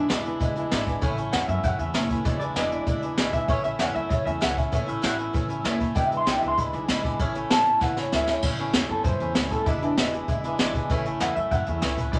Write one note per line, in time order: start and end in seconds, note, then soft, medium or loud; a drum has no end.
0.09 0.33 E1 medium
0.09 0.25 E2 medium
0.09 0.25 B2 medium
0.09 0.25 E3 medium
0.09 0.25 G#3 medium
0.09 0.24 D4 medium
0.09 0.99 E4 loud
0.09 0.24 E4 medium
0.09 snare loud
0.09 closed hi-hat medium
0.25 0.39 E3 soft
0.25 0.39 G#3 medium
0.25 0.40 D4 soft
0.25 0.41 E4 medium
0.25 closed hi-hat medium
0.40 0.64 E1 medium
0.40 0.56 E3 medium
0.40 0.56 G#3 medium
0.40 0.55 D4 medium
0.40 0.55 E4 medium
0.40 kick loud
0.40 closed hi-hat medium
0.56 0.71 E3 soft
0.56 0.71 G#3 medium
0.56 0.72 D4 medium
0.56 0.71 E4 medium
0.56 closed hi-hat medium
0.71 0.95 G#1 medium
0.71 0.87 E2 medium
0.71 0.87 B2 medium
0.71 0.87 E3 loud
0.71 0.87 G#3 medium
0.71 0.86 D4 loud
0.71 0.85 E4 loud
0.71 snare loud
0.71 closed hi-hat medium
0.86 1.01 E3 soft
0.86 1.02 G#3 medium
0.86 1.02 D4 medium
0.86 1.02 E4 medium
0.86 kick medium
0.86 closed hi-hat medium
1.01 1.25 A1 medium
1.01 1.17 A2 medium
1.01 1.18 E3 medium
1.01 1.18 A3 medium
1.01 1.17 C#4 loud
1.01 1.15 E4 medium
1.01 kick loud
1.01 closed hi-hat medium
1.17 1.32 A3 medium
1.17 1.32 C#4 medium
1.17 1.33 E4 medium
1.17 closed hi-hat medium
1.33 1.45 E2 medium
1.33 1.48 A2 medium
1.33 1.49 E3 medium
1.33 1.49 A3 medium
1.33 1.48 C#4 medium
1.33 1.47 E4 medium
1.33 1.48 F#5 loud
1.33 snare loud
1.33 closed hi-hat medium
1.48 1.60 F#2 loud
1.48 1.63 A3 soft
1.48 1.64 C#4 soft
1.48 1.64 E4 medium
1.48 1.64 E5 loud
1.48 closed hi-hat medium
1.63 1.75 F#2 loud
1.63 1.79 E3 medium
1.63 1.79 A3 medium
1.63 1.78 C#4 medium
1.63 1.77 E4 medium
1.63 1.79 F#5 medium
1.63 kick medium
1.63 closed hi-hat medium
1.79 1.91 E2 medium
1.79 1.93 A3 soft
1.79 1.94 C#4 medium
1.79 1.94 E4 medium
1.79 1.95 E5 medium
1.79 closed hi-hat medium
1.94 2.18 F#1 medium
1.94 2.10 A2 medium
1.94 2.10 E3 medium
1.94 2.10 A3 medium
1.94 2.09 C#4 medium
1.94 2.08 E4 medium
1.94 2.10 C#5 medium
1.94 snare loud
1.94 closed hi-hat medium
2.09 2.26 A3 soft
2.09 2.26 C#4 soft
2.09 2.25 E4 medium
2.09 2.25 B4 medium
2.09 kick medium
2.09 closed hi-hat medium
2.25 2.48 E1 medium
2.25 2.41 E2 medium
2.25 2.41 B2 medium
2.25 2.41 E3 medium
2.25 2.40 G#3 medium
2.25 2.40 D4 medium
2.25 2.39 E4 medium
2.25 2.39 C#5 medium
2.25 kick loud
2.25 closed hi-hat medium
2.40 2.56 E3 soft
2.40 2.56 G#3 soft
2.40 2.56 D4 soft
2.40 2.56 E4 medium
2.40 3.00 D5 loud
2.40 closed hi-hat medium
2.56 2.79 E1 medium
2.56 2.72 E2 medium
2.56 2.72 B2 medium
2.56 2.72 E3 medium
2.56 2.72 G#3 medium
2.56 2.71 D4 medium
2.56 2.71 E4 medium
2.56 snare loud
2.56 closed hi-hat medium
2.72 2.85 E3 soft
2.72 2.86 G#3 soft
2.72 2.87 D4 medium
2.72 2.87 E4 soft
2.72 closed hi-hat medium
2.87 3.10 E1 medium
2.87 3.03 E3 medium
2.87 3.03 G#3 medium
2.87 3.02 D4 medium
2.87 3.01 E4 medium
2.87 kick loud
2.87 closed hi-hat medium
3.02 3.17 E3 soft
3.02 3.18 G#3 medium
3.02 3.18 D4 medium
3.02 3.18 E4 medium
3.02 closed hi-hat medium
3.17 3.41 B1 medium
3.17 3.34 E2 medium
3.17 3.34 B2 medium
3.17 3.34 E3 medium
3.17 3.33 G#3 medium
3.17 3.32 D4 loud
3.17 3.32 E4 loud
3.17 snare loud
3.17 closed hi-hat medium
3.33 3.48 E3 soft
3.33 3.49 G#3 soft
3.33 3.49 D4 soft
3.33 3.49 E4 soft
3.33 3.48 E5 loud
3.33 kick medium
3.33 closed hi-hat medium
3.48 3.72 A1 medium
3.48 3.64 A2 medium
3.48 3.65 E3 medium
3.48 3.65 A3 medium
3.48 3.64 C#4 medium
3.48 3.62 E4 medium
3.48 3.64 C#5 medium
3.48 kick loud
3.48 closed hi-hat medium
3.64 3.79 A3 soft
3.64 3.79 C#4 medium
3.64 3.80 E4 medium
3.64 3.79 E5 loud
3.64 closed hi-hat medium
3.79 3.91 E2 medium
3.79 3.95 A2 medium
3.79 3.95 E3 medium
3.79 3.95 A3 medium
3.79 3.95 C#4 medium
3.79 3.93 E4 loud
3.79 3.94 F#5 medium
3.79 snare loud
3.79 closed hi-hat medium
3.94 4.07 F#2 medium
3.94 4.10 A3 soft
3.94 4.10 C#4 medium
3.94 4.10 E4 medium
3.94 4.10 E5 loud
3.94 closed hi-hat medium
4.09 4.22 F#2 medium
4.09 4.26 E3 medium
4.09 4.26 A3 medium
4.09 4.25 C#4 medium
4.09 4.24 E4 medium
4.09 4.25 C#5 medium
4.09 kick loud
4.09 closed hi-hat medium
4.25 4.38 E2 medium
4.25 4.40 A3 soft
4.25 4.41 C#4 medium
4.25 4.41 E4 soft
4.25 4.41 E5 medium
4.25 closed hi-hat medium
4.41 4.65 C#2 medium
4.41 4.57 A2 medium
4.41 4.57 E3 medium
4.41 4.57 A3 medium
4.41 4.56 C#4 medium
4.41 4.55 E4 medium
4.41 4.58 F#5 medium
4.41 snare loud
4.41 closed hi-hat medium
4.56 4.71 A3 soft
4.56 4.72 C#4 soft
4.56 4.72 E4 medium
4.56 4.74 E5 medium
4.56 kick medium
4.56 closed hi-hat medium
4.72 4.96 A1 medium
4.72 4.88 A2 medium
4.72 4.88 E3 medium
4.72 4.87 A3 medium
4.72 4.86 C#4 medium
4.72 4.85 E4 medium
4.72 4.89 C#5 medium
4.72 kick loud
4.72 closed hi-hat medium
4.86 5.01 A3 soft
4.86 5.02 C#4 medium
4.86 5.02 E4 medium
4.86 5.05 E5 medium
4.86 closed hi-hat medium
5.02 5.27 A1 medium
5.02 5.18 A2 medium
5.02 5.18 E3 medium
5.02 5.19 A3 medium
5.02 5.17 C#4 medium
5.02 5.17 E4 loud
5.02 5.18 F#5 medium
5.02 snare loud
5.02 closed hi-hat medium
5.18 5.33 A3 soft
5.18 5.34 C#4 soft
5.18 5.34 E4 medium
5.18 5.78 E5 medium
5.18 closed hi-hat medium
5.33 5.57 A1 medium
5.33 5.49 E3 medium
5.33 5.50 A3 medium
5.33 5.49 C#4 medium
5.33 5.47 E4 medium
5.33 kick loud
5.33 closed hi-hat medium
5.49 5.64 A3 soft
5.49 5.64 C#4 soft
5.49 5.65 E4 medium
5.49 closed hi-hat medium
5.64 5.88 F#1 medium
5.64 5.80 A2 loud
5.64 5.81 E3 loud
5.64 5.81 A3 loud
5.64 5.80 C#4 medium
5.64 5.78 E4 loud
5.64 snare loud
5.64 closed hi-hat medium
5.80 5.96 A3 medium
5.80 5.96 C#4 medium
5.80 5.96 E4 medium
5.80 kick medium
5.80 closed hi-hat medium
5.95 6.19 E1 medium
5.95 6.11 E2 medium
5.95 6.11 B2 medium
5.95 6.12 E3 medium
5.95 6.11 G#3 medium
5.95 6.11 D4 medium
5.95 6.09 E4 medium
5.95 6.06 G5 medium
5.95 kick loud
5.95 closed hi-hat medium
6.06 6.16 E5 loud
6.11 6.26 E3 medium
6.11 6.26 G#3 soft
6.11 6.26 D4 medium
6.11 6.26 E4 medium
6.11 closed hi-hat medium
6.17 6.27 C6 medium
6.26 6.38 B1 medium
6.26 6.42 E2 medium
6.26 6.42 B2 medium
6.26 6.42 E3 medium
6.26 6.41 G#3 medium
6.26 6.41 D4 medium
6.26 6.40 E4 medium
6.26 6.38 G5 loud
6.26 snare loud
6.26 closed hi-hat medium
6.38 6.57 E4 medium
6.38 6.48 E5 medium
6.42 6.54 C#2 medium
6.42 6.56 E3 soft
6.42 6.57 G#3 medium
6.42 6.58 D4 medium
6.42 closed hi-hat medium
6.48 6.59 C6 medium
6.58 6.69 D2 medium
6.58 6.73 E3 medium
6.58 6.73 G#3 medium
6.58 6.72 D4 medium
6.58 6.71 E4 medium
6.58 7.18 B5 loud
6.58 kick loud
6.58 closed hi-hat medium
6.73 6.85 B1 loud
6.73 6.88 E3 soft
6.73 6.88 G#3 medium
6.73 6.89 D4 medium
6.73 6.88 E4 medium
6.73 closed hi-hat medium
6.88 7.12 G#1 medium
6.88 7.04 E2 medium
6.88 7.04 B2 medium
6.88 7.04 E3 medium
6.88 7.04 G#3 medium
6.88 7.03 D4 medium
6.88 7.03 E4 medium
6.88 snare loud
6.88 closed hi-hat medium
7.04 7.19 E3 soft
7.04 7.20 G#3 medium
7.04 7.20 D4 medium
7.04 7.19 E4 medium
7.04 kick medium
7.04 closed hi-hat medium
7.19 7.43 A1 medium
7.19 7.35 A2 medium
7.19 7.35 E3 medium
7.19 7.35 A3 medium
7.19 7.35 C#4 loud
7.19 7.34 E4 medium
7.19 kick loud
7.19 closed hi-hat medium
7.35 7.50 A3 medium
7.35 7.50 C#4 medium
7.35 7.50 E4 medium
7.35 closed hi-hat medium
7.50 7.74 A1 medium
7.50 7.66 A2 medium
7.50 7.66 E3 medium
7.50 7.66 A3 medium
7.50 7.66 C#4 medium
7.50 7.65 E4 medium
7.50 7.81 A5 loud
7.50 snare loud
7.50 closed hi-hat loud
7.66 7.80 A3 soft
7.66 7.81 C#4 soft
7.66 7.81 E4 medium
7.66 closed hi-hat medium
7.80 8.04 A1 medium
7.80 7.96 E3 medium
7.80 7.97 A3 medium
7.80 7.97 C#4 medium
7.80 7.96 E4 medium
7.80 7.97 F#5 medium
7.80 kick loud
7.80 snare medium
7.97 8.12 A3 soft
7.97 8.12 C#4 soft
7.97 8.12 E4 medium
7.97 8.13 C#5 medium
7.97 snare medium
8.12 8.35 D2 medium
8.12 8.28 A2 medium
8.12 8.28 E3 medium
8.12 8.28 A3 medium
8.12 8.28 C#4 medium
8.12 8.27 E4 medium
8.12 8.29 E5 medium
8.12 snare medium
8.27 8.43 A3 soft
8.27 8.44 C#4 soft
8.27 8.43 E4 soft
8.27 8.43 C#5 medium
8.27 snare medium
8.42 8.66 A1 medium
8.42 8.59 A2 medium
8.42 8.59 E3 medium
8.42 8.59 A3 medium
8.42 8.59 C#4 medium
8.42 8.58 E4 medium
8.42 kick loud
8.42 crash loud
8.58 8.74 A3 medium
8.58 8.74 C#4 medium
8.58 8.74 E4 medium
8.58 closed hi-hat medium
8.73 8.85 E2 medium
8.73 8.90 A2 medium
8.73 8.90 E3 loud
8.73 8.90 A3 medium
8.73 8.90 C#4 loud
8.73 8.88 E4 loud
8.73 snare loud
8.73 closed hi-hat medium
8.89 9.01 F#2 loud
8.89 9.04 A3 soft
8.89 9.05 C#4 medium
8.89 9.05 E4 medium
8.89 9.04 A4 medium
8.89 closed hi-hat soft
9.04 9.16 F#2 loud
9.04 9.20 E3 medium
9.04 9.20 A3 medium
9.04 9.20 C#4 medium
9.04 9.19 E4 medium
9.04 9.49 C5 medium
9.04 kick loud
9.04 closed hi-hat medium
9.20 9.32 E2 medium
9.20 9.35 A3 soft
9.20 9.35 C#4 medium
9.20 9.36 E4 medium
9.20 closed hi-hat medium
9.35 9.58 C#2 medium
9.35 9.51 A2 medium
9.35 9.51 E3 medium
9.35 9.51 A3 medium
9.35 9.50 C#4 medium
9.35 9.49 E4 loud
9.35 snare loud
9.35 closed hi-hat medium
9.51 9.67 A3 soft
9.51 9.67 C#4 soft
9.51 9.66 E4 soft
9.51 9.66 A4 medium
9.51 kick medium
9.51 closed hi-hat medium
9.66 9.90 E1 medium
9.66 9.82 E2 medium
9.66 9.82 B2 medium
9.66 9.82 E3 medium
9.66 9.82 G#3 medium
9.66 9.81 D4 medium
9.66 9.81 E4 medium
9.66 9.80 E4 medium
9.66 kick loud
9.66 closed hi-hat medium
9.81 9.97 E3 soft
9.81 9.97 G#3 medium
9.81 9.97 D4 medium
9.81 9.98 D4 medium
9.81 9.97 E4 medium
9.81 closed hi-hat medium
9.97 10.20 E1 medium
9.97 10.13 E2 medium
9.97 10.13 B2 medium
9.97 10.13 E3 medium
9.97 10.13 G#3 medium
9.97 10.13 D4 medium
9.97 10.87 E4 loud
9.97 10.12 E4 medium
9.97 snare loud
9.97 closed hi-hat medium
10.13 10.27 E3 soft
10.13 10.28 G#3 medium
10.13 10.29 D4 medium
10.13 10.28 E4 medium
10.13 closed hi-hat medium
10.28 10.51 E1 medium
10.28 10.44 E3 medium
10.28 10.44 G#3 medium
10.28 10.44 D4 medium
10.28 10.43 E4 medium
10.28 kick medium
10.28 closed hi-hat medium
10.44 10.58 E3 medium
10.44 10.59 G#3 medium
10.44 10.59 D4 medium
10.44 10.59 E4 medium
10.44 closed hi-hat medium
10.59 10.82 A1 medium
10.59 10.74 E2 loud
10.59 10.75 B2 medium
10.59 10.75 E3 loud
10.59 10.75 G#3 medium
10.59 10.74 D4 loud
10.59 10.73 E4 loud
10.59 snare loud
10.59 closed hi-hat medium
10.74 10.89 E3 soft
10.74 10.91 G#3 medium
10.74 10.90 D4 medium
10.74 10.90 E4 medium
10.74 kick medium
10.74 closed hi-hat medium
10.89 11.13 A1 medium
10.89 11.05 A2 medium
10.89 11.06 E3 loud
10.89 11.06 A3 medium
10.89 11.05 C#4 medium
10.89 11.04 E4 medium
10.89 kick loud
10.89 closed hi-hat medium
11.05 11.20 A3 medium
11.05 11.21 C#4 medium
11.05 11.21 E4 medium
11.05 closed hi-hat medium
11.20 11.32 E2 medium
11.20 11.36 A2 medium
11.20 11.36 E3 medium
11.20 11.37 A3 medium
11.20 11.36 C#4 medium
11.20 11.35 E4 medium
11.20 11.35 F#5 medium
11.20 snare loud
11.20 closed hi-hat medium
11.35 11.48 F#2 medium
11.35 11.51 A3 soft
11.35 11.52 C#4 soft
11.35 11.52 E4 soft
11.35 11.51 E5 medium
11.35 closed hi-hat medium
11.51 11.63 F#2 medium
11.51 11.67 E3 medium
11.51 11.67 A3 medium
11.51 11.67 C#4 medium
11.51 11.66 E4 medium
11.51 11.66 F#5 medium
11.51 kick loud
11.51 closed hi-hat medium
11.66 11.79 E2 loud
11.66 11.82 A3 soft
11.66 11.83 C#4 soft
11.66 11.83 E4 medium
11.66 11.81 E5 medium
11.66 closed hi-hat medium
11.81 12.05 C#2 medium
11.81 11.98 A2 medium
11.81 11.98 E3 medium
11.81 11.98 A3 medium
11.81 11.98 C#4 medium
11.81 11.97 E4 medium
11.81 11.97 C#5 medium
11.81 snare medium
11.81 closed hi-hat medium
11.97 12.14 A3 soft
11.97 12.14 C#4 soft
11.97 12.14 E4 soft
11.97 12.12 B4 medium
11.97 kick medium
11.97 closed hi-hat medium
12.12 12.19 E1 medium
12.12 12.19 E2 medium
12.12 12.19 B2 medium
12.12 12.19 E3 medium
12.12 12.19 G#3 medium
12.12 12.19 D4 medium
12.12 12.19 E4 medium
12.12 12.19 C#5 medium
12.12 kick loud
12.12 closed hi-hat medium